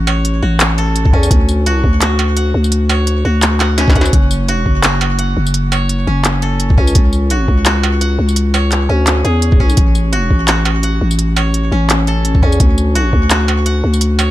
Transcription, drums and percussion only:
0.07 tambourine medium
0.07 struck metal medium
0.25 closed hi-hat medium
0.60 clap loud
0.60 closed hi-hat medium
0.78 closed hi-hat soft
0.96 closed hi-hat medium
1.05 kick loud
1.13 kick medium
1.23 tambourine medium
1.31 kick loud
1.31 closed hi-hat medium
1.49 tambourine medium
1.66 closed hi-hat medium
1.84 kick medium
2.01 clap loud
2.01 closed hi-hat medium
2.19 closed hi-hat soft
2.19 struck metal medium
2.37 closed hi-hat medium
2.64 tambourine medium
2.72 closed hi-hat medium
2.89 tambourine medium
2.89 struck metal medium
3.07 closed hi-hat medium
3.42 clap loud
3.42 closed hi-hat medium
3.60 clap medium
3.60 closed hi-hat soft
3.60 struck metal medium
3.78 snare medium
3.78 closed hi-hat medium
3.88 kick loud
3.88 snare medium
3.95 kick medium
3.95 closed hi-hat soft
4.01 snare medium
4.05 tambourine medium
4.13 kick loud
4.13 closed hi-hat medium
4.31 tambourine medium
4.48 closed hi-hat medium
4.66 kick medium
4.83 clap loud
4.83 closed hi-hat medium
5.01 closed hi-hat soft
5.01 struck metal medium
5.19 closed hi-hat medium
5.47 tambourine medium
5.54 closed hi-hat medium
5.72 tambourine medium
5.72 struck metal medium
5.89 closed hi-hat medium
6.25 clap loud
6.25 closed hi-hat medium
6.42 closed hi-hat soft
6.60 closed hi-hat medium
6.70 kick loud
6.78 kick medium
6.87 tambourine medium
6.95 kick loud
6.95 closed hi-hat medium
7.13 tambourine medium
7.30 closed hi-hat medium
7.48 kick medium
7.66 clap loud
7.66 closed hi-hat medium
7.83 closed hi-hat soft
7.83 struck metal medium
8.01 closed hi-hat medium
8.29 tambourine medium
8.36 closed hi-hat medium
8.54 tambourine medium
8.54 struck metal medium
8.72 clap medium
8.72 closed hi-hat medium
9.07 clap loud
9.07 closed hi-hat medium
9.25 closed hi-hat soft
9.42 closed hi-hat medium
9.52 kick loud
9.60 kick medium
9.70 tambourine medium
9.77 kick loud
9.77 closed hi-hat medium
9.95 tambourine medium
10.13 closed hi-hat medium
10.30 kick medium
10.48 clap loud
10.48 closed hi-hat medium
10.65 closed hi-hat soft
10.65 struck metal medium
10.83 closed hi-hat medium
11.11 tambourine medium
11.19 closed hi-hat medium
11.36 tambourine medium
11.36 struck metal medium
11.54 closed hi-hat medium
11.90 clap loud
11.90 closed hi-hat medium
12.07 closed hi-hat soft
12.25 closed hi-hat medium
12.35 kick loud
12.42 kick medium
12.52 tambourine medium
12.60 kick loud
12.60 closed hi-hat medium
12.78 tambourine medium
12.95 closed hi-hat medium
13.13 kick medium
13.30 clap loud
13.30 closed hi-hat medium
13.48 closed hi-hat soft
13.48 struck metal medium
13.66 closed hi-hat medium
13.94 tambourine medium
14.01 closed hi-hat medium
14.19 tambourine medium
14.19 struck metal medium

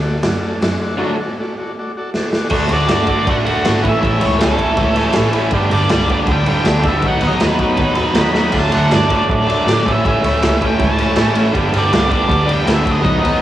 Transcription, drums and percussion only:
0.23 snare loud
0.23 open hi-hat soft
0.62 snare loud
0.62 open hi-hat soft
2.14 snare medium
2.33 snare loud
2.50 kick loud
2.50 crash loud
2.69 ride medium
2.88 snare loud
2.88 ride loud
3.07 kick medium
3.07 ride medium
3.27 kick loud
3.27 ride loud
3.46 ride medium
3.65 snare loud
3.65 ride loud
3.84 kick medium
3.84 ride medium
4.03 kick loud
4.03 ride medium
4.21 ride medium
4.40 snare loud
4.40 ride loud
4.58 kick medium
4.58 ride medium
4.77 kick loud
4.77 ride loud
4.96 ride medium
5.13 snare loud
5.13 ride loud
5.33 ride medium
5.51 kick loud
5.51 ride medium
5.71 ride medium
5.90 snare loud
5.90 ride loud
6.09 kick medium
6.09 ride medium
6.27 kick loud
6.27 ride loud
6.46 ride medium
6.65 snare loud
6.65 ride medium
6.83 kick medium
6.83 ride medium
7.02 kick loud
7.02 ride medium
7.21 ride medium
7.40 snare loud
7.40 ride loud
7.59 kick medium
7.59 ride medium
7.77 kick loud
7.77 ride loud
7.95 ride medium
8.14 snare loud
8.14 ride loud
8.34 snare medium
8.52 kick loud
8.52 splash medium
8.52 crash loud
8.72 ride medium
8.91 snare loud
8.91 ride loud
9.10 kick medium
9.10 ride medium
9.29 kick loud
9.29 ride loud
9.49 ride medium
9.68 snare loud
9.68 ride loud
9.86 kick medium
9.86 ride medium
10.05 kick loud
10.05 ride medium
10.24 ride medium
10.42 snare loud
10.42 ride loud
10.61 kick medium
10.61 ride medium
10.79 kick loud
10.79 ride loud
10.98 ride medium
11.16 snare loud
11.16 ride loud
11.35 ride medium
11.55 kick loud
11.55 ride loud
11.73 ride medium
11.93 snare loud
11.93 ride loud
12.11 kick medium
12.11 ride medium
12.30 kick loud
12.30 ride loud
12.49 ride medium
12.67 snare loud
12.67 ride loud
12.86 kick medium
12.86 ride medium
13.05 kick loud
13.05 ride medium
13.25 ride medium

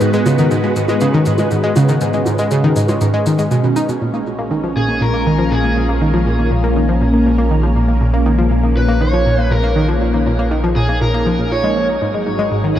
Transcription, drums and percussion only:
0.01 shaker medium
0.13 shaker soft
0.26 high conga medium
0.26 shaker medium
0.38 shaker soft
0.51 shaker medium
0.76 shaker medium
0.88 high conga medium
0.88 shaker medium
1.01 shaker medium
1.26 shaker medium
1.38 high conga medium
1.38 shaker medium
1.51 shaker medium
1.76 high conga medium
1.76 shaker medium
1.88 shaker medium
2.01 shaker medium
2.13 shaker soft
2.26 high conga medium
2.26 shaker medium
2.38 shaker soft
2.51 shaker medium
2.76 shaker medium
2.89 high conga medium
2.89 shaker medium
3.01 shaker medium
3.26 shaker medium
3.39 shaker soft
3.51 shaker medium
3.76 shaker medium
3.89 shaker medium

